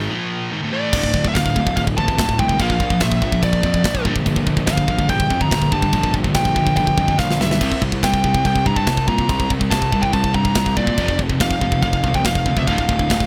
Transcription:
0.09 A#2 F3 A#3
0.51 G#2 D#3
0.61 D2 A2
0.72 A2 E3 A3 D5
0.93 D1 D2 A2 D3, kick, crash
1.03 D2 A2, kick
1.14 D1 D2 A2, kick
1.24 D2 A2, kick
1.28 E5
1.34 D1 D2 A2 F5, kick, snare, crash
1.46 kick
1.55 D1 D2 A2, kick
1.65 D2 A2, kick
1.76 D1 D2 A2 F5, kick, crash
1.87 kick
1.97 A1 D2 A2 A5, kick
2.07 D2 A2, kick
2.18 D1 D2 A2, kick, snare, crash
2.29 kick
2.39 C2 D2 A2 G5, kick
2.49 D2 A2, kick
2.59 A#1 A#2 F3 A#3 F5, kick, crash
2.70 A#2 F3, kick
2.80 A#1 A#2 F3, kick
2.90 A#2 F3, kick
3.00 A#1 A#2 F3 E5, kick, snare, crash
3.12 kick
3.22 A#1 A#2 F3, kick
3.32 A#2 F3, kick
3.43 A#1 A#2 F3 D5, kick, crash
3.53 kick
3.63 F2 A#2 F3, kick
3.74 A#2 F3, kick
3.84 A#1 A#2 F3, kick, snare, crash
3.95 kick
4.05 A#1 G2 D3 G3, kick
4.16 G2 D3, kick
4.26 A#1 G2 D3, kick, crash
4.36 G2 D3, kick
4.46 A#1 G2 D3, kick
4.56 G2 D3, kick
4.67 A#1 G2 D3 F5, kick, snare, crash
4.78 kick
4.87 A#1 G2 D3, kick
4.99 G2 D3, kick
5.09 A#1 G2 D3 G5, kick, crash
5.20 kick
5.30 F2 G2 D3, kick
5.41 G2 D3 A#5, kick
5.51 A#1 G2 D3, kick, snare, crash
5.62 kick
5.72 G2 D3 G3 A5, kick
5.82 G2 D3, kick
5.93 A#1 G2 D3, kick, crash
6.03 G2 D3, kick
6.14 A#1 G2 D3, kick
6.24 G2 D3, kick
6.34 A#1 G2 D3 G5, kick, snare, crash
6.45 kick
6.55 A#1 G2 D3, kick
6.66 G2 D3, kick
6.76 A#1 G2 D3 G5, kick, crash
6.87 kick
6.98 F2 G2 D3, kick
7.08 G2 D3, kick
7.19 A#1 G2 D3 F5, kick, snare
7.31 snare
7.40 B1 G2 D3 E5, snare
7.51 G2 D3, snare
7.61 C2 C3 G3 C4, kick, crash
7.71 C3 G3, kick
7.82 C2 C3 G3, kick
7.92 C3 G3, kick
8.02 C2 C3 G3 G5, kick, snare, crash
8.14 kick
8.24 C2 C3 G3, kick
8.33 C3 G3, kick
8.44 C2 C3 G3 G5, kick, crash
8.56 kick
8.65 G2 C3 G3 A#5, kick
8.76 C3 G3 A5, kick
8.87 C2 C3 G3, kick, snare, crash
8.97 kick
9.08 A#2 C3 G3 A#5, kick
9.18 C3 G3, kick
9.29 C2 C3 G3 C4, kick, crash
9.39 C3 G3, kick
9.50 C2 C3 G3, kick
9.60 C3 G3, kick
9.71 C2 C3 G3 A5, kick, snare, crash
9.82 kick
9.92 C2 C3 G3, kick
10.02 C3 G3 G5, kick
10.13 C2 C3 G3 A5, kick, crash
10.24 kick
10.34 G2 C3 G3 A#5, kick
10.45 C3 G3, kick
10.55 C2 C3 G3, kick, snare, crash
10.66 kick
10.77 A#2 C3 G3 D5, kick
10.87 C3 G3, kick
10.97 F1 F2 C3 F3, kick, crash
11.08 F2 C3, kick
11.19 F1 F2 C3, kick
11.30 F2 C3, kick
11.40 F1 F2 C3 F5, kick, snare, crash
11.51 kick
11.61 F1 F2 C3, kick
11.72 F2 C3, kick
11.82 F1 F2 C3 F5, kick, crash
11.93 kick
12.03 C2 F2 C3, kick
12.14 F2 C3 G5, kick
12.25 F1 F2 C3 F5, kick, snare, crash
12.35 kick
12.46 D2 F2 C3, kick
12.57 F2 C3 E5, kick
12.67 D1 D2 A2 D3 F5, kick, crash
12.78 D2 A2, kick
12.89 D1 D2 A2, kick
12.99 D2 A2, kick
13.09 D1 D2 A2, kick, snare, crash
13.20 kick

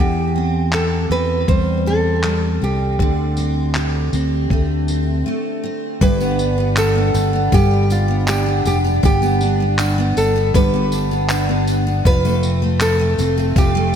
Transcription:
Already playing: E2 G4
0.00 G4
0.36 C4
0.72 G4 A4, clap
1.10 E2 C4 B4
1.48 E2 G3 C5, kick
1.86 C4 A4
2.23 G3, clap
2.61 C2 C4 G4
2.99 D2 D3, kick
3.37 C4, tambourine
3.75 G4, clap
4.13 D2 C4, tambourine
4.50 D2 A3, kick
4.88 C4, tambourine
5.26 A3
5.63 C4
6.01 G1 G2 G4 B4, kick, tambourine
6.20 B3, tambourine
6.39 D4, tambourine
6.58 B3
6.76 D4 A4, clap, tambourine
6.95 B3
7.14 G1 D4, tambourine
7.33 B3
7.52 G1 G2 G4, kick, tambourine
7.71 B3
7.90 D4 F4, tambourine
8.08 B3
8.27 D4 G4, clap, tambourine
8.46 B3
8.65 F1 D4 G4, tambourine
8.84 B3, tambourine
9.03 G1 G2 G4, kick, tambourine
9.22 B3, tambourine
9.41 D4, tambourine
9.60 B3
9.78 D4, clap, tambourine
9.98 B3
10.17 G1 D4 A4, tambourine
10.36 B3, tambourine
10.54 G1 G2 G4 B4, kick, tambourine
10.74 B3
10.92 D4, tambourine
11.11 B3, tambourine
11.29 D4, clap, tambourine
11.49 B3
11.67 D4, tambourine
11.87 B3, tambourine
12.05 F1 F2 F4 B4, kick, tambourine
12.25 A3, tambourine
12.43 C4, tambourine
12.62 A3
12.80 C4 A4, clap, tambourine
12.99 A3
13.18 F1 C4, tambourine
13.38 A3, tambourine
13.56 F1 F2 F4 G4, kick, tambourine
13.75 A3

